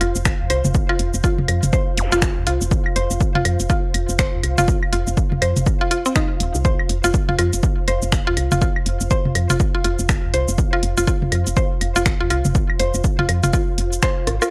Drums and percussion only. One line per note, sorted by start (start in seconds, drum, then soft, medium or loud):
0.01 closed hi-hat medium
0.01 claves medium
0.16 shaker medium
0.25 finger snap loud
0.25 kick loud
0.25 shaker soft
0.50 closed hi-hat loud
0.50 claves medium
0.65 mid tom loud
0.65 shaker medium
0.75 kick loud
0.75 shaker soft
0.89 claves medium
0.99 closed hi-hat medium
1.14 shaker medium
1.24 kick loud
1.24 shaker soft
1.38 mid tom medium
1.48 closed hi-hat medium
1.48 claves medium
1.63 closed hi-hat soft
1.63 mid tom medium
1.63 shaker medium
1.73 kick loud
1.73 shaker soft
1.98 closed hi-hat loud
2.12 shaker medium
2.22 finger snap loud
2.22 kick loud
2.22 shaker soft
2.47 closed hi-hat loud
2.61 shaker medium
2.71 kick loud
2.71 shaker soft
2.86 claves medium
2.96 closed hi-hat loud
3.11 shaker medium
3.21 kick loud
3.21 shaker soft
3.35 mid tom loud
3.45 closed hi-hat medium
3.45 claves medium
3.60 closed hi-hat soft
3.60 shaker medium
3.70 kick loud
3.70 shaker soft
3.94 closed hi-hat loud
3.94 claves medium
4.09 shaker medium
4.19 finger snap loud
4.19 kick loud
4.19 shaker soft
4.43 closed hi-hat loud
4.43 claves medium
4.58 mid tom medium
4.58 shaker medium
4.68 kick loud
4.68 shaker soft
4.83 claves medium
4.93 closed hi-hat medium
5.07 shaker medium
5.17 kick loud
5.17 shaker soft
5.32 mid tom medium
5.42 closed hi-hat medium
5.42 claves medium
5.57 closed hi-hat soft
5.57 mid tom medium
5.57 shaker medium
5.66 kick loud
5.66 shaker soft
5.91 closed hi-hat loud
6.06 shaker soft
6.16 finger snap loud
6.16 kick loud
6.16 shaker soft
6.40 closed hi-hat loud
6.55 shaker medium
6.65 kick loud
6.65 shaker soft
6.79 claves medium
6.89 closed hi-hat medium
7.04 shaker medium
7.14 kick loud
7.14 shaker soft
7.29 mid tom medium
7.39 closed hi-hat medium
7.39 claves medium
7.53 closed hi-hat soft
7.53 shaker medium
7.63 kick loud
7.63 shaker soft
7.88 closed hi-hat loud
7.88 claves medium
8.02 shaker medium
8.12 finger snap loud
8.12 kick loud
8.12 shaker soft
8.37 closed hi-hat medium
8.37 claves medium
8.52 mid tom medium
8.52 shaker medium
8.61 kick loud
8.61 shaker soft
8.76 claves medium
8.86 closed hi-hat medium
9.01 shaker medium
9.11 kick loud
9.11 shaker soft
9.25 mid tom medium
9.35 closed hi-hat medium
9.35 claves medium
9.50 closed hi-hat soft
9.50 mid tom medium
9.50 shaker medium
9.60 kick loud
9.60 shaker soft
9.84 closed hi-hat medium
9.99 shaker medium
10.09 finger snap loud
10.09 kick loud
10.09 shaker soft
10.34 closed hi-hat medium
10.48 shaker medium
10.58 kick loud
10.58 shaker soft
10.73 claves medium
10.83 closed hi-hat medium
10.98 shaker medium
11.07 kick loud
11.07 shaker soft
11.22 mid tom medium
11.32 closed hi-hat medium
11.32 claves medium
11.47 closed hi-hat soft
11.47 shaker medium
11.57 kick loud
11.57 shaker soft
11.81 closed hi-hat medium
11.81 claves medium
11.96 shaker medium
12.06 finger snap loud
12.06 kick loud
12.06 shaker soft
12.30 closed hi-hat medium
12.30 claves medium
12.45 mid tom medium
12.45 shaker medium
12.55 kick loud
12.55 shaker soft
12.70 claves medium
12.80 closed hi-hat medium
12.94 shaker medium
13.04 kick loud
13.04 shaker soft
13.19 mid tom medium
13.29 closed hi-hat medium
13.29 claves medium
13.43 closed hi-hat soft
13.43 mid tom medium
13.43 shaker medium
13.53 kick loud
13.53 shaker soft
13.78 closed hi-hat medium
13.93 closed hi-hat soft
13.93 shaker medium
14.03 finger snap loud
14.03 kick loud
14.03 shaker soft
14.27 cross-stick medium
14.27 closed hi-hat medium
14.42 cross-stick medium
14.42 claves medium
14.42 shaker medium